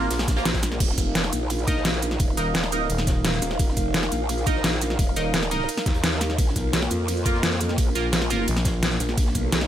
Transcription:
Already playing: A#3 F4 A#4
0.02 snare
0.11 A#1, snare, closed hi-hat, ride
0.19 snare, closed hi-hat, shaker
0.28 kick, snare, closed hi-hat, shaker
0.36 A#3 F4 A#4, snare, closed hi-hat
0.45 snare, closed hi-hat, ride
0.54 kick, snare, closed hi-hat, shaker
0.63 snare, closed hi-hat, shaker
0.72 snare
0.80 D#1 D#4 A#4 F5, kick, closed hi-hat, ride, crash
0.89 snare
0.98 F1, kick, closed hi-hat, shaker
1.15 snare, closed hi-hat, ride
1.24 snare
1.33 A#1, closed hi-hat, shaker
1.50 closed hi-hat, ride
1.59 shaker
1.67 D#4 A#4 D#5, kick, closed hi-hat, shaker
1.77 snare
1.85 snare, closed hi-hat, ride
1.94 snare, shaker
2.02 closed hi-hat, shaker
2.11 snare
2.19 D#1, kick, closed hi-hat, ride
2.37 D#1 D#4 A#4 D#5, snare, closed hi-hat, shaker
2.54 snare, closed hi-hat, ride
2.64 snare
2.72 D#4 A#4 D#5, closed hi-hat, shaker
2.89 D#1, closed hi-hat, ride
2.98 snare, shaker
3.07 kick, snare, closed hi-hat, shaker
3.25 snare, closed hi-hat, ride
3.33 snare, shaker
3.42 D#1, closed hi-hat, shaker
3.51 snare
3.59 D#1, kick, closed hi-hat, ride
3.68 snare
3.77 F1, kick, closed hi-hat, shaker
3.94 snare, closed hi-hat, ride
4.03 snare
4.12 A#1, closed hi-hat, shaker
4.29 closed hi-hat, ride
4.38 shaker
4.47 D#4 A#4 D#5, kick, closed hi-hat, shaker
4.55 snare
4.64 snare, closed hi-hat, ride
4.73 snare, shaker
4.82 closed hi-hat, shaker
4.90 snare
4.99 D#1, kick, closed hi-hat, ride
5.16 D#1 D#4 A#4 D#5, snare, closed hi-hat, shaker
5.34 snare, closed hi-hat, ride
5.43 snare, shaker
5.51 D#4 A#4 D#5, closed hi-hat, shaker
5.60 snare
5.68 closed hi-hat, ride
5.77 snare, closed hi-hat, shaker
5.86 D#2, kick, snare, closed hi-hat, shaker
5.94 closed hi-hat
6.03 snare, closed hi-hat, ride
6.12 snare, shaker
6.21 snare, closed hi-hat, shaker
6.30 snare
6.38 A#1 A#3 F4, kick, closed hi-hat, ride
6.47 snare
6.56 B1, kick, closed hi-hat, shaker
6.73 snare, closed hi-hat, ride
6.82 snare
6.91 F2, closed hi-hat, shaker
7.08 closed hi-hat, ride
7.17 shaker
7.26 A#3 F4 A#4, kick, closed hi-hat, shaker
7.34 snare
7.43 snare, closed hi-hat, ride
7.52 snare, shaker
7.61 closed hi-hat, shaker
7.69 snare
7.78 A#1, kick, closed hi-hat, ride
7.95 A#1 A#3 F4 A#4, snare, closed hi-hat, shaker
8.12 snare, closed hi-hat, ride
8.22 snare
8.30 A#3 F4 A#4, closed hi-hat, shaker
8.47 A#1, closed hi-hat, ride
8.57 snare, shaker
8.65 kick, snare, closed hi-hat, shaker
8.82 snare, closed hi-hat, ride
8.91 snare, shaker
9.00 A#1, closed hi-hat, shaker
9.09 snare
9.18 A#1 D#4, kick, closed hi-hat, ride
9.26 snare
9.35 B1, kick, closed hi-hat, shaker
9.52 snare, closed hi-hat, ride
9.61 snare

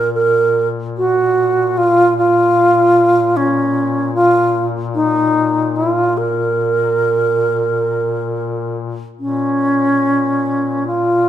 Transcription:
Already playing: A#2 A#4
0.14 A#4
0.97 F#4
1.78 F4
2.18 F4
3.37 C#4
4.15 F4
4.95 D#4
5.76 F4
6.18 A#4
9.17 A#2 C#4
10.87 F4

